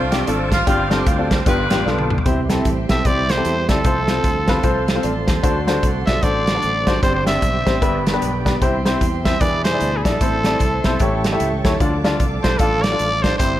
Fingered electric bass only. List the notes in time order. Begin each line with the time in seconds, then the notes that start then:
Already playing: C2
0.28 G#1
0.67 G1
1.07 D2
1.46 G1
1.70 A1
1.86 B1
2.26 C2
2.66 A1
2.90 B1
3.05 C2
3.46 E2
3.69 C#2
3.85 C2
4.24 D2
4.64 C2
5.04 A1
5.28 D#2
5.44 D2
5.83 C2
6.08 B1
6.23 A1
6.64 A1
6.87 G#1
7.03 G1
7.43 B1
7.67 A1
7.82 G1
8.22 B1
8.62 C2
9.01 E2
9.41 E2
9.81 D2
10.05 A#1
10.21 A1
10.61 C2
10.85 B1
11.00 A1
11.41 C#2
11.65 D#2
11.81 D2
12.20 C2
12.44 B1
12.60 A1
13.00 A1
13.40 G1